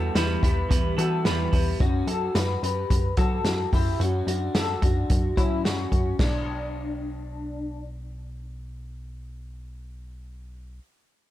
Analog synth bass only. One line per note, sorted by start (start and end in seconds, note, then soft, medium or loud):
0.00 0.10 E2 loud
0.15 0.38 E2 loud
0.43 0.65 E2 medium
0.70 0.93 E2 loud
0.98 1.27 E3 loud
1.25 1.48 E2 loud
1.53 1.75 E2 loud
1.80 2.03 F#2 loud
2.07 2.30 F#2 medium
2.35 2.57 F#2 loud
2.62 2.85 F#2 medium
2.90 3.13 F#2 loud
3.17 3.40 F#3 medium
3.44 3.67 F#2 medium
3.73 3.95 F#2 medium
4.00 4.22 F#2 loud
4.27 4.49 F#2 medium
4.54 4.77 F#2 loud
4.82 5.04 F#2 medium
5.10 5.32 F#2 loud
5.37 5.66 F#3 loud
5.64 5.87 F#2 loud
5.92 6.14 F#2 medium
6.19 10.80 B1 loud